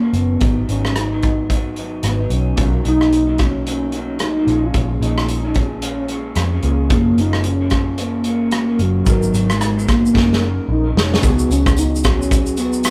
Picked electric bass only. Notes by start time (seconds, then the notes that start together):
0.13 F#1
0.41 G#1
0.69 G#1
2.03 G#1
2.30 B1
2.57 B1
2.85 B1
4.47 A#1
4.74 A#1
5.01 A#1
6.36 F2
6.63 C#2
6.90 F#1
7.17 F#1
8.79 F#1
9.06 G#1
9.33 G#1
10.15 F#1
10.68 A#1
10.95 F1
11.23 C#2
11.50 C#2